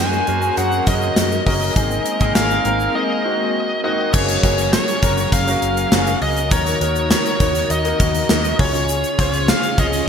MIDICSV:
0, 0, Header, 1, 7, 480
1, 0, Start_track
1, 0, Tempo, 594059
1, 1424, Time_signature, 4, 2, 24, 8
1, 8151, End_track
2, 0, Start_track
2, 0, Title_t, "Lead electric guitar"
2, 0, Program_c, 0, 29
2, 0, Note_on_c, 0, 80, 100
2, 433, Note_off_c, 0, 80, 0
2, 468, Note_on_c, 0, 78, 96
2, 706, Note_on_c, 0, 75, 95
2, 713, Note_off_c, 0, 78, 0
2, 1152, Note_off_c, 0, 75, 0
2, 1185, Note_on_c, 0, 75, 91
2, 1872, Note_off_c, 0, 75, 0
2, 1905, Note_on_c, 0, 77, 87
2, 2386, Note_on_c, 0, 75, 73
2, 2399, Note_off_c, 0, 77, 0
2, 3073, Note_off_c, 0, 75, 0
2, 3104, Note_on_c, 0, 75, 78
2, 3341, Note_off_c, 0, 75, 0
2, 3344, Note_on_c, 0, 73, 83
2, 3815, Note_off_c, 0, 73, 0
2, 3825, Note_on_c, 0, 73, 75
2, 4304, Note_on_c, 0, 77, 89
2, 4319, Note_off_c, 0, 73, 0
2, 4992, Note_off_c, 0, 77, 0
2, 5028, Note_on_c, 0, 75, 77
2, 5264, Note_off_c, 0, 75, 0
2, 5268, Note_on_c, 0, 73, 84
2, 5713, Note_off_c, 0, 73, 0
2, 5749, Note_on_c, 0, 73, 83
2, 6228, Note_off_c, 0, 73, 0
2, 6231, Note_on_c, 0, 75, 84
2, 6947, Note_off_c, 0, 75, 0
2, 6950, Note_on_c, 0, 73, 90
2, 7669, Note_on_c, 0, 77, 91
2, 7689, Note_off_c, 0, 73, 0
2, 7910, Note_on_c, 0, 75, 86
2, 7913, Note_off_c, 0, 77, 0
2, 8151, Note_off_c, 0, 75, 0
2, 8151, End_track
3, 0, Start_track
3, 0, Title_t, "Grand piano"
3, 0, Program_c, 1, 0
3, 0, Control_c, 1, 64, 127
3, 0, Note_on_c, 1, 58, 77
3, 0, Note_on_c, 1, 61, 69
3, 0, Note_on_c, 1, 66, 72
3, 0, Note_on_c, 1, 68, 83
3, 103, Note_off_c, 1, 58, 0
3, 104, Note_off_c, 1, 61, 0
3, 106, Note_off_c, 1, 66, 0
3, 108, Note_off_c, 1, 68, 0
3, 220, Note_on_c, 1, 58, 73
3, 223, Note_on_c, 1, 61, 66
3, 226, Note_on_c, 1, 66, 65
3, 229, Note_on_c, 1, 70, 82
3, 383, Note_off_c, 1, 58, 0
3, 384, Note_off_c, 1, 61, 0
3, 386, Note_off_c, 1, 66, 0
3, 388, Note_off_c, 1, 70, 0
3, 459, Note_on_c, 1, 58, 73
3, 462, Note_on_c, 1, 61, 69
3, 465, Note_on_c, 1, 66, 66
3, 469, Note_on_c, 1, 68, 78
3, 622, Note_off_c, 1, 58, 0
3, 624, Note_off_c, 1, 61, 0
3, 626, Note_off_c, 1, 66, 0
3, 627, Note_off_c, 1, 68, 0
3, 699, Note_on_c, 1, 58, 73
3, 702, Note_on_c, 1, 61, 68
3, 705, Note_on_c, 1, 66, 67
3, 707, Note_on_c, 1, 70, 77
3, 1023, Note_off_c, 1, 58, 0
3, 1025, Note_off_c, 1, 61, 0
3, 1026, Note_off_c, 1, 66, 0
3, 1027, Note_off_c, 1, 70, 0
3, 1180, Note_on_c, 1, 58, 76
3, 1182, Note_on_c, 1, 61, 65
3, 1185, Note_on_c, 1, 66, 67
3, 1189, Note_on_c, 1, 70, 84
3, 1343, Note_off_c, 1, 58, 0
3, 1344, Note_off_c, 1, 61, 0
3, 1346, Note_off_c, 1, 66, 0
3, 1347, Note_off_c, 1, 70, 0
3, 1419, Note_on_c, 1, 58, 74
3, 1422, Note_on_c, 1, 60, 68
3, 1425, Note_on_c, 1, 63, 69
3, 1429, Note_on_c, 1, 68, 82
3, 1435, Control_c, 1, 64, 0
3, 1558, Control_c, 1, 64, 127
3, 1663, Note_off_c, 1, 58, 0
3, 1664, Note_off_c, 1, 60, 0
3, 1666, Note_off_c, 1, 63, 0
3, 1668, Note_off_c, 1, 68, 0
3, 1780, Note_on_c, 1, 58, 76
3, 1783, Note_on_c, 1, 60, 67
3, 1786, Note_on_c, 1, 63, 70
3, 1789, Note_on_c, 1, 68, 85
3, 2023, Note_off_c, 1, 58, 0
3, 2025, Note_off_c, 1, 60, 0
3, 2027, Note_off_c, 1, 63, 0
3, 2028, Note_off_c, 1, 68, 0
3, 2140, Note_on_c, 1, 58, 72
3, 2143, Note_on_c, 1, 60, 65
3, 2146, Note_on_c, 1, 63, 67
3, 2149, Note_on_c, 1, 70, 81
3, 2303, Note_off_c, 1, 58, 0
3, 2304, Note_off_c, 1, 60, 0
3, 2306, Note_off_c, 1, 63, 0
3, 2307, Note_off_c, 1, 70, 0
3, 2379, Note_on_c, 1, 58, 75
3, 2382, Note_on_c, 1, 60, 69
3, 2385, Note_on_c, 1, 63, 69
3, 2388, Note_on_c, 1, 68, 81
3, 2542, Note_off_c, 1, 58, 0
3, 2544, Note_off_c, 1, 60, 0
3, 2545, Note_off_c, 1, 63, 0
3, 2547, Note_off_c, 1, 68, 0
3, 2619, Note_on_c, 1, 58, 73
3, 2622, Note_on_c, 1, 60, 68
3, 2625, Note_on_c, 1, 63, 67
3, 2628, Note_on_c, 1, 66, 79
3, 2943, Note_off_c, 1, 58, 0
3, 2945, Note_off_c, 1, 60, 0
3, 2946, Note_off_c, 1, 63, 0
3, 2948, Note_off_c, 1, 66, 0
3, 3100, Note_on_c, 1, 58, 87
3, 3103, Note_on_c, 1, 60, 82
3, 3106, Note_on_c, 1, 63, 80
3, 3109, Note_on_c, 1, 66, 97
3, 3263, Note_off_c, 1, 58, 0
3, 3264, Note_off_c, 1, 60, 0
3, 3266, Note_off_c, 1, 63, 0
3, 3267, Note_off_c, 1, 66, 0
3, 3338, Note_on_c, 1, 58, 72
3, 3342, Note_on_c, 1, 61, 71
3, 3345, Note_on_c, 1, 66, 68
3, 3349, Note_on_c, 1, 68, 80
3, 3354, Control_c, 1, 64, 0
3, 3502, Note_off_c, 1, 58, 0
3, 3504, Note_off_c, 1, 61, 0
3, 3505, Note_off_c, 1, 66, 0
3, 3507, Note_off_c, 1, 68, 0
3, 3513, Control_c, 1, 64, 127
3, 3580, Note_on_c, 1, 58, 75
3, 3583, Note_on_c, 1, 61, 71
3, 3587, Note_on_c, 1, 66, 69
3, 3590, Note_on_c, 1, 68, 83
3, 3904, Note_off_c, 1, 58, 0
3, 3905, Note_off_c, 1, 61, 0
3, 3907, Note_off_c, 1, 66, 0
3, 3909, Note_off_c, 1, 68, 0
3, 4059, Note_on_c, 1, 58, 72
3, 4062, Note_on_c, 1, 61, 70
3, 4065, Note_on_c, 1, 66, 67
3, 4069, Note_on_c, 1, 70, 79
3, 4303, Note_off_c, 1, 58, 0
3, 4304, Note_off_c, 1, 61, 0
3, 4306, Note_off_c, 1, 66, 0
3, 4308, Note_off_c, 1, 70, 0
3, 4419, Note_on_c, 1, 58, 80
3, 4422, Note_on_c, 1, 61, 71
3, 4425, Note_on_c, 1, 66, 67
3, 4429, Note_on_c, 1, 70, 84
3, 4663, Note_off_c, 1, 58, 0
3, 4664, Note_off_c, 1, 61, 0
3, 4666, Note_off_c, 1, 66, 0
3, 4668, Note_off_c, 1, 70, 0
3, 4779, Note_on_c, 1, 58, 72
3, 4783, Note_on_c, 1, 61, 69
3, 4785, Note_on_c, 1, 66, 72
3, 4789, Note_on_c, 1, 68, 82
3, 5103, Note_off_c, 1, 58, 0
3, 5105, Note_off_c, 1, 61, 0
3, 5106, Note_off_c, 1, 66, 0
3, 5108, Note_off_c, 1, 68, 0
3, 5259, Note_on_c, 1, 58, 75
3, 5262, Note_on_c, 1, 63, 70
3, 5265, Note_on_c, 1, 66, 70
3, 5268, Note_on_c, 1, 70, 83
3, 5273, Control_c, 1, 64, 0
3, 5414, Control_c, 1, 64, 127
3, 5422, Note_off_c, 1, 58, 0
3, 5424, Note_off_c, 1, 63, 0
3, 5425, Note_off_c, 1, 66, 0
3, 5427, Note_off_c, 1, 70, 0
3, 5498, Note_on_c, 1, 58, 74
3, 5501, Note_on_c, 1, 63, 71
3, 5505, Note_on_c, 1, 66, 70
3, 5507, Note_on_c, 1, 70, 85
3, 5823, Note_off_c, 1, 58, 0
3, 5824, Note_off_c, 1, 63, 0
3, 5826, Note_off_c, 1, 66, 0
3, 5827, Note_off_c, 1, 70, 0
3, 5980, Note_on_c, 1, 58, 71
3, 5983, Note_on_c, 1, 63, 71
3, 5985, Note_on_c, 1, 66, 65
3, 5989, Note_on_c, 1, 73, 80
3, 6223, Note_off_c, 1, 58, 0
3, 6225, Note_off_c, 1, 63, 0
3, 6226, Note_off_c, 1, 66, 0
3, 6228, Note_off_c, 1, 73, 0
3, 6338, Note_on_c, 1, 58, 78
3, 6341, Note_on_c, 1, 63, 73
3, 6344, Note_on_c, 1, 66, 72
3, 6348, Note_on_c, 1, 70, 89
3, 6582, Note_off_c, 1, 58, 0
3, 6584, Note_off_c, 1, 63, 0
3, 6585, Note_off_c, 1, 66, 0
3, 6587, Note_off_c, 1, 70, 0
3, 6698, Note_on_c, 1, 58, 77
3, 6701, Note_on_c, 1, 63, 72
3, 6703, Note_on_c, 1, 66, 70
3, 6708, Note_on_c, 1, 70, 86
3, 6940, Note_on_c, 1, 61, 80
3, 6941, Note_off_c, 1, 58, 0
3, 6942, Note_off_c, 1, 63, 0
3, 6943, Note_on_c, 1, 65, 74
3, 6944, Note_off_c, 1, 66, 0
3, 6946, Note_off_c, 1, 70, 0
3, 6946, Note_on_c, 1, 68, 71
3, 6949, Note_on_c, 1, 73, 89
3, 6956, Control_c, 1, 64, 0
3, 7120, Control_c, 1, 64, 127
3, 7326, Note_off_c, 1, 61, 0
3, 7327, Note_off_c, 1, 65, 0
3, 7329, Note_off_c, 1, 68, 0
3, 7331, Note_off_c, 1, 73, 0
3, 7419, Note_on_c, 1, 61, 77
3, 7423, Note_on_c, 1, 65, 72
3, 7427, Note_on_c, 1, 68, 73
3, 7429, Note_on_c, 1, 72, 87
3, 7743, Note_off_c, 1, 61, 0
3, 7745, Note_off_c, 1, 65, 0
3, 7747, Note_off_c, 1, 68, 0
3, 7748, Note_off_c, 1, 72, 0
3, 7898, Note_on_c, 1, 61, 73
3, 7901, Note_on_c, 1, 65, 64
3, 7905, Note_on_c, 1, 68, 68
3, 7907, Note_on_c, 1, 73, 82
3, 8142, Note_off_c, 1, 61, 0
3, 8144, Note_off_c, 1, 65, 0
3, 8146, Note_off_c, 1, 68, 0
3, 8147, Note_off_c, 1, 73, 0
3, 8151, End_track
4, 0, Start_track
4, 0, Title_t, "Horn section"
4, 0, Program_c, 2, 61
4, 0, Note_on_c, 2, 56, 87
4, 0, Note_on_c, 2, 66, 89
4, 0, Note_on_c, 2, 72, 99
4, 1150, Note_off_c, 2, 72, 0
4, 1151, Note_off_c, 2, 56, 0
4, 1151, Note_off_c, 2, 66, 0
4, 1423, Note_on_c, 2, 51, 83
4, 1423, Note_on_c, 2, 60, 85
4, 1423, Note_on_c, 2, 70, 94
4, 3071, Note_off_c, 2, 51, 0
4, 3071, Note_off_c, 2, 60, 0
4, 3071, Note_off_c, 2, 70, 0
4, 8151, End_track
5, 0, Start_track
5, 0, Title_t, "String machine"
5, 0, Program_c, 3, 50
5, 0, Note_on_c, 3, 54, 84
5, 0, Note_on_c, 3, 61, 99
5, 0, Note_on_c, 3, 68, 72
5, 0, Note_on_c, 3, 70, 91
5, 1390, Note_off_c, 3, 61, 0
5, 1401, Note_off_c, 3, 70, 0
5, 1402, Note_off_c, 3, 54, 0
5, 1402, Note_off_c, 3, 68, 0
5, 1421, Note_on_c, 3, 56, 88
5, 1421, Note_on_c, 3, 58, 76
5, 1421, Note_on_c, 3, 60, 93
5, 3323, Note_off_c, 3, 56, 0
5, 3323, Note_off_c, 3, 58, 0
5, 3323, Note_off_c, 3, 60, 0
5, 3341, Note_on_c, 3, 54, 90
5, 3341, Note_on_c, 3, 68, 82
5, 3342, Note_on_c, 3, 61, 82
5, 3342, Note_on_c, 3, 70, 92
5, 5243, Note_off_c, 3, 54, 0
5, 5243, Note_off_c, 3, 68, 0
5, 5244, Note_off_c, 3, 61, 0
5, 5261, Note_on_c, 3, 63, 82
5, 5261, Note_on_c, 3, 66, 78
5, 5262, Note_on_c, 3, 51, 86
5, 6911, Note_off_c, 3, 70, 0
5, 6925, Note_off_c, 3, 63, 0
5, 6925, Note_off_c, 3, 66, 0
5, 6926, Note_off_c, 3, 51, 0
5, 6943, Note_on_c, 3, 49, 84
5, 6944, Note_on_c, 3, 65, 78
5, 6944, Note_on_c, 3, 68, 96
5, 6945, Note_on_c, 3, 61, 79
5, 8151, Note_off_c, 3, 49, 0
5, 8151, Note_off_c, 3, 61, 0
5, 8151, Note_off_c, 3, 65, 0
5, 8151, Note_off_c, 3, 68, 0
5, 8151, End_track
6, 0, Start_track
6, 0, Title_t, "Fingered electric bass"
6, 0, Program_c, 4, 33
6, 0, Note_on_c, 4, 42, 97
6, 157, Note_off_c, 4, 42, 0
6, 224, Note_on_c, 4, 42, 94
6, 397, Note_off_c, 4, 42, 0
6, 464, Note_on_c, 4, 42, 102
6, 637, Note_off_c, 4, 42, 0
6, 704, Note_on_c, 4, 42, 90
6, 876, Note_off_c, 4, 42, 0
6, 943, Note_on_c, 4, 42, 104
6, 1116, Note_off_c, 4, 42, 0
6, 1184, Note_on_c, 4, 30, 92
6, 1357, Note_off_c, 4, 30, 0
6, 1423, Note_on_c, 4, 32, 102
6, 1596, Note_off_c, 4, 32, 0
6, 1783, Note_on_c, 4, 32, 86
6, 1870, Note_off_c, 4, 32, 0
6, 1903, Note_on_c, 4, 32, 98
6, 2076, Note_off_c, 4, 32, 0
6, 2142, Note_on_c, 4, 32, 95
6, 2315, Note_off_c, 4, 32, 0
6, 3344, Note_on_c, 4, 30, 109
6, 3517, Note_off_c, 4, 30, 0
6, 3583, Note_on_c, 4, 30, 94
6, 3843, Note_off_c, 4, 30, 0
6, 4062, Note_on_c, 4, 30, 102
6, 4235, Note_off_c, 4, 30, 0
6, 4301, Note_on_c, 4, 30, 102
6, 4475, Note_off_c, 4, 30, 0
6, 4541, Note_on_c, 4, 30, 96
6, 4715, Note_off_c, 4, 30, 0
6, 4781, Note_on_c, 4, 30, 100
6, 4955, Note_off_c, 4, 30, 0
6, 5021, Note_on_c, 4, 37, 81
6, 5264, Note_off_c, 4, 37, 0
6, 5264, Note_on_c, 4, 39, 104
6, 5437, Note_off_c, 4, 39, 0
6, 5500, Note_on_c, 4, 39, 99
6, 5761, Note_off_c, 4, 39, 0
6, 5982, Note_on_c, 4, 39, 96
6, 6155, Note_off_c, 4, 39, 0
6, 6222, Note_on_c, 4, 39, 100
6, 6395, Note_off_c, 4, 39, 0
6, 6464, Note_on_c, 4, 39, 106
6, 6637, Note_off_c, 4, 39, 0
6, 6703, Note_on_c, 4, 39, 104
6, 6876, Note_off_c, 4, 39, 0
6, 6944, Note_on_c, 4, 37, 101
6, 7289, Note_off_c, 4, 37, 0
6, 7424, Note_on_c, 4, 37, 101
6, 7683, Note_off_c, 4, 37, 0
6, 7903, Note_on_c, 4, 37, 97
6, 8076, Note_off_c, 4, 37, 0
6, 8151, End_track
7, 0, Start_track
7, 0, Title_t, "Drums"
7, 103, Note_on_c, 9, 82, 41
7, 183, Note_off_c, 9, 82, 0
7, 220, Note_on_c, 9, 42, 62
7, 301, Note_off_c, 9, 42, 0
7, 338, Note_on_c, 9, 82, 49
7, 419, Note_off_c, 9, 82, 0
7, 463, Note_on_c, 9, 42, 78
7, 463, Note_on_c, 9, 82, 70
7, 544, Note_off_c, 9, 42, 0
7, 544, Note_off_c, 9, 82, 0
7, 580, Note_on_c, 9, 82, 42
7, 661, Note_off_c, 9, 82, 0
7, 701, Note_on_c, 9, 42, 71
7, 701, Note_on_c, 9, 82, 49
7, 704, Note_on_c, 9, 36, 87
7, 782, Note_off_c, 9, 42, 0
7, 782, Note_off_c, 9, 82, 0
7, 784, Note_off_c, 9, 36, 0
7, 821, Note_on_c, 9, 82, 49
7, 902, Note_off_c, 9, 82, 0
7, 940, Note_on_c, 9, 38, 106
7, 943, Note_on_c, 9, 42, 80
7, 945, Note_on_c, 9, 82, 68
7, 1021, Note_off_c, 9, 38, 0
7, 1024, Note_off_c, 9, 42, 0
7, 1026, Note_off_c, 9, 82, 0
7, 1065, Note_on_c, 9, 82, 47
7, 1145, Note_off_c, 9, 82, 0
7, 1182, Note_on_c, 9, 46, 72
7, 1184, Note_on_c, 9, 36, 88
7, 1263, Note_off_c, 9, 46, 0
7, 1265, Note_off_c, 9, 36, 0
7, 1306, Note_on_c, 9, 82, 48
7, 1387, Note_off_c, 9, 82, 0
7, 1420, Note_on_c, 9, 82, 69
7, 1422, Note_on_c, 9, 42, 85
7, 1423, Note_on_c, 9, 36, 105
7, 1501, Note_off_c, 9, 82, 0
7, 1503, Note_off_c, 9, 42, 0
7, 1504, Note_off_c, 9, 36, 0
7, 1544, Note_on_c, 9, 82, 50
7, 1625, Note_off_c, 9, 82, 0
7, 1661, Note_on_c, 9, 82, 46
7, 1662, Note_on_c, 9, 42, 81
7, 1741, Note_off_c, 9, 82, 0
7, 1743, Note_off_c, 9, 42, 0
7, 1778, Note_on_c, 9, 82, 39
7, 1784, Note_on_c, 9, 36, 84
7, 1859, Note_off_c, 9, 82, 0
7, 1865, Note_off_c, 9, 36, 0
7, 1901, Note_on_c, 9, 38, 117
7, 1903, Note_on_c, 9, 82, 71
7, 1904, Note_on_c, 9, 42, 89
7, 1982, Note_off_c, 9, 38, 0
7, 1984, Note_off_c, 9, 42, 0
7, 1984, Note_off_c, 9, 82, 0
7, 2024, Note_on_c, 9, 82, 43
7, 2105, Note_off_c, 9, 82, 0
7, 2141, Note_on_c, 9, 42, 66
7, 2222, Note_off_c, 9, 42, 0
7, 2262, Note_on_c, 9, 82, 51
7, 2343, Note_off_c, 9, 82, 0
7, 3341, Note_on_c, 9, 82, 68
7, 3343, Note_on_c, 9, 49, 95
7, 3344, Note_on_c, 9, 36, 111
7, 3422, Note_off_c, 9, 82, 0
7, 3424, Note_off_c, 9, 49, 0
7, 3425, Note_off_c, 9, 36, 0
7, 3464, Note_on_c, 9, 42, 58
7, 3466, Note_on_c, 9, 82, 52
7, 3544, Note_off_c, 9, 42, 0
7, 3546, Note_off_c, 9, 82, 0
7, 3582, Note_on_c, 9, 42, 80
7, 3583, Note_on_c, 9, 36, 91
7, 3663, Note_off_c, 9, 42, 0
7, 3664, Note_off_c, 9, 36, 0
7, 3701, Note_on_c, 9, 82, 41
7, 3702, Note_on_c, 9, 42, 48
7, 3782, Note_off_c, 9, 82, 0
7, 3783, Note_off_c, 9, 42, 0
7, 3822, Note_on_c, 9, 38, 116
7, 3822, Note_on_c, 9, 54, 70
7, 3823, Note_on_c, 9, 82, 72
7, 3903, Note_off_c, 9, 38, 0
7, 3903, Note_off_c, 9, 54, 0
7, 3904, Note_off_c, 9, 82, 0
7, 3943, Note_on_c, 9, 42, 52
7, 3946, Note_on_c, 9, 82, 43
7, 4024, Note_off_c, 9, 42, 0
7, 4027, Note_off_c, 9, 82, 0
7, 4060, Note_on_c, 9, 42, 67
7, 4062, Note_on_c, 9, 36, 87
7, 4062, Note_on_c, 9, 82, 51
7, 4141, Note_off_c, 9, 42, 0
7, 4143, Note_off_c, 9, 36, 0
7, 4143, Note_off_c, 9, 82, 0
7, 4181, Note_on_c, 9, 82, 51
7, 4183, Note_on_c, 9, 42, 52
7, 4262, Note_off_c, 9, 82, 0
7, 4264, Note_off_c, 9, 42, 0
7, 4301, Note_on_c, 9, 36, 94
7, 4304, Note_on_c, 9, 42, 86
7, 4305, Note_on_c, 9, 82, 70
7, 4382, Note_off_c, 9, 36, 0
7, 4385, Note_off_c, 9, 42, 0
7, 4386, Note_off_c, 9, 82, 0
7, 4424, Note_on_c, 9, 82, 41
7, 4425, Note_on_c, 9, 42, 53
7, 4505, Note_off_c, 9, 82, 0
7, 4506, Note_off_c, 9, 42, 0
7, 4543, Note_on_c, 9, 42, 75
7, 4543, Note_on_c, 9, 82, 52
7, 4624, Note_off_c, 9, 42, 0
7, 4624, Note_off_c, 9, 82, 0
7, 4663, Note_on_c, 9, 82, 51
7, 4664, Note_on_c, 9, 42, 54
7, 4744, Note_off_c, 9, 82, 0
7, 4745, Note_off_c, 9, 42, 0
7, 4782, Note_on_c, 9, 38, 110
7, 4784, Note_on_c, 9, 54, 64
7, 4784, Note_on_c, 9, 82, 70
7, 4863, Note_off_c, 9, 38, 0
7, 4865, Note_off_c, 9, 54, 0
7, 4865, Note_off_c, 9, 82, 0
7, 4904, Note_on_c, 9, 82, 52
7, 4905, Note_on_c, 9, 42, 46
7, 4985, Note_off_c, 9, 82, 0
7, 4986, Note_off_c, 9, 42, 0
7, 5023, Note_on_c, 9, 46, 76
7, 5104, Note_off_c, 9, 46, 0
7, 5143, Note_on_c, 9, 42, 51
7, 5148, Note_on_c, 9, 82, 49
7, 5223, Note_off_c, 9, 42, 0
7, 5229, Note_off_c, 9, 82, 0
7, 5261, Note_on_c, 9, 82, 71
7, 5264, Note_on_c, 9, 36, 108
7, 5264, Note_on_c, 9, 42, 85
7, 5342, Note_off_c, 9, 82, 0
7, 5345, Note_off_c, 9, 36, 0
7, 5345, Note_off_c, 9, 42, 0
7, 5385, Note_on_c, 9, 42, 59
7, 5386, Note_on_c, 9, 82, 51
7, 5465, Note_off_c, 9, 42, 0
7, 5467, Note_off_c, 9, 82, 0
7, 5505, Note_on_c, 9, 42, 87
7, 5585, Note_off_c, 9, 42, 0
7, 5620, Note_on_c, 9, 82, 43
7, 5623, Note_on_c, 9, 42, 46
7, 5701, Note_off_c, 9, 82, 0
7, 5704, Note_off_c, 9, 42, 0
7, 5741, Note_on_c, 9, 54, 76
7, 5742, Note_on_c, 9, 38, 114
7, 5744, Note_on_c, 9, 82, 77
7, 5822, Note_off_c, 9, 38, 0
7, 5822, Note_off_c, 9, 54, 0
7, 5824, Note_off_c, 9, 82, 0
7, 5863, Note_on_c, 9, 42, 52
7, 5866, Note_on_c, 9, 82, 42
7, 5944, Note_off_c, 9, 42, 0
7, 5947, Note_off_c, 9, 82, 0
7, 5980, Note_on_c, 9, 42, 64
7, 5982, Note_on_c, 9, 36, 94
7, 5982, Note_on_c, 9, 82, 49
7, 6061, Note_off_c, 9, 42, 0
7, 6062, Note_off_c, 9, 36, 0
7, 6063, Note_off_c, 9, 82, 0
7, 6101, Note_on_c, 9, 42, 51
7, 6102, Note_on_c, 9, 82, 52
7, 6182, Note_off_c, 9, 42, 0
7, 6182, Note_off_c, 9, 82, 0
7, 6222, Note_on_c, 9, 42, 83
7, 6226, Note_on_c, 9, 82, 70
7, 6303, Note_off_c, 9, 42, 0
7, 6307, Note_off_c, 9, 82, 0
7, 6342, Note_on_c, 9, 42, 55
7, 6344, Note_on_c, 9, 82, 44
7, 6423, Note_off_c, 9, 42, 0
7, 6424, Note_off_c, 9, 82, 0
7, 6462, Note_on_c, 9, 42, 73
7, 6464, Note_on_c, 9, 36, 98
7, 6464, Note_on_c, 9, 82, 53
7, 6542, Note_off_c, 9, 42, 0
7, 6544, Note_off_c, 9, 82, 0
7, 6545, Note_off_c, 9, 36, 0
7, 6582, Note_on_c, 9, 42, 54
7, 6584, Note_on_c, 9, 82, 48
7, 6663, Note_off_c, 9, 42, 0
7, 6664, Note_off_c, 9, 82, 0
7, 6701, Note_on_c, 9, 38, 113
7, 6703, Note_on_c, 9, 54, 64
7, 6706, Note_on_c, 9, 82, 68
7, 6781, Note_off_c, 9, 38, 0
7, 6783, Note_off_c, 9, 54, 0
7, 6787, Note_off_c, 9, 82, 0
7, 6824, Note_on_c, 9, 42, 46
7, 6825, Note_on_c, 9, 82, 47
7, 6905, Note_off_c, 9, 42, 0
7, 6905, Note_off_c, 9, 82, 0
7, 6944, Note_on_c, 9, 36, 114
7, 6944, Note_on_c, 9, 46, 80
7, 7024, Note_off_c, 9, 36, 0
7, 7025, Note_off_c, 9, 46, 0
7, 7062, Note_on_c, 9, 42, 48
7, 7066, Note_on_c, 9, 82, 49
7, 7143, Note_off_c, 9, 42, 0
7, 7147, Note_off_c, 9, 82, 0
7, 7179, Note_on_c, 9, 82, 70
7, 7184, Note_on_c, 9, 42, 85
7, 7260, Note_off_c, 9, 82, 0
7, 7265, Note_off_c, 9, 42, 0
7, 7304, Note_on_c, 9, 42, 57
7, 7304, Note_on_c, 9, 82, 52
7, 7385, Note_off_c, 9, 42, 0
7, 7385, Note_off_c, 9, 82, 0
7, 7424, Note_on_c, 9, 36, 94
7, 7425, Note_on_c, 9, 42, 84
7, 7505, Note_off_c, 9, 36, 0
7, 7505, Note_off_c, 9, 42, 0
7, 7541, Note_on_c, 9, 82, 41
7, 7545, Note_on_c, 9, 42, 47
7, 7622, Note_off_c, 9, 82, 0
7, 7626, Note_off_c, 9, 42, 0
7, 7662, Note_on_c, 9, 82, 72
7, 7663, Note_on_c, 9, 38, 124
7, 7663, Note_on_c, 9, 54, 71
7, 7743, Note_off_c, 9, 38, 0
7, 7743, Note_off_c, 9, 54, 0
7, 7743, Note_off_c, 9, 82, 0
7, 7784, Note_on_c, 9, 42, 54
7, 7787, Note_on_c, 9, 82, 41
7, 7865, Note_off_c, 9, 42, 0
7, 7867, Note_off_c, 9, 82, 0
7, 7902, Note_on_c, 9, 42, 70
7, 7902, Note_on_c, 9, 82, 54
7, 7903, Note_on_c, 9, 36, 88
7, 7983, Note_off_c, 9, 42, 0
7, 7983, Note_off_c, 9, 82, 0
7, 7984, Note_off_c, 9, 36, 0
7, 8022, Note_on_c, 9, 82, 53
7, 8024, Note_on_c, 9, 42, 53
7, 8103, Note_off_c, 9, 82, 0
7, 8105, Note_off_c, 9, 42, 0
7, 8151, End_track
0, 0, End_of_file